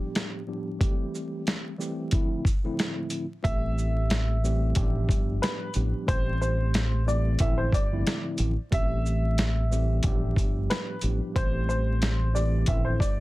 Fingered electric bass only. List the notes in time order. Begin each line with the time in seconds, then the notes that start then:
3.45 A1
4.76 A1
5.09 G1
5.76 A1
6.09 A1
7.40 A1
7.73 G1
8.40 A1
8.72 A1
10.04 A1
10.37 G1
11.03 A1
11.36 A1
12.68 A1
13.00 G1